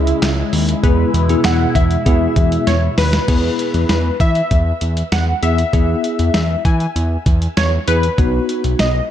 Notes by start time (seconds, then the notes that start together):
Already playing: C#2 C#3 G#3 C#4 E4 G#4 E5
0.07 closed hi-hat
0.22 C#2, snare, clap, closed hi-hat
0.53 D#2, open hi-hat
0.69 closed hi-hat
0.83 E2 B2 B3 E4 G#4 B4, kick, closed hi-hat
1.14 E2, closed hi-hat
1.29 B3 E4 G#4, closed hi-hat
1.44 E2 F#5, snare, clap, closed hi-hat
1.75 E2 E5, kick, closed hi-hat
1.91 closed hi-hat
2.06 E2 B3 E4 G#4, kick, closed hi-hat
2.36 E2, kick, closed hi-hat
2.52 closed hi-hat
2.67 E2 C#5, snare, closed hi-hat
2.98 D#2 B4, snare, open hi-hat
3.13 snare, closed hi-hat
3.28 E2 B3 E4 G#4, kick, closed hi-hat, crash
3.59 closed hi-hat
3.74 E2, closed hi-hat
3.89 E2 B4, snare, closed hi-hat
4.20 E3 E5, kick, closed hi-hat
4.35 closed hi-hat
4.51 E2, kick, closed hi-hat
4.81 E2, closed hi-hat
4.97 closed hi-hat
5.12 E2 F#5, snare, closed hi-hat
5.43 E2 B3 E4 G#4 E5, closed hi-hat
5.58 closed hi-hat
5.73 E2 B3 E4 G#4, kick, closed hi-hat
6.04 closed hi-hat
6.19 E2, closed hi-hat
6.34 E2 E5, snare, closed hi-hat
6.65 E3 G#5, kick, closed hi-hat
6.80 closed hi-hat
6.96 E2, closed hi-hat
7.26 E2, kick, closed hi-hat
7.42 closed hi-hat
7.57 E2 C#5, snare, closed hi-hat
7.88 E2 B3 E4 G#4 B4, closed hi-hat
8.03 closed hi-hat
8.18 B1 B3 D#4 F#4, kick, closed hi-hat
8.49 closed hi-hat
8.64 B1, closed hi-hat
8.79 B1 D#5, snare, closed hi-hat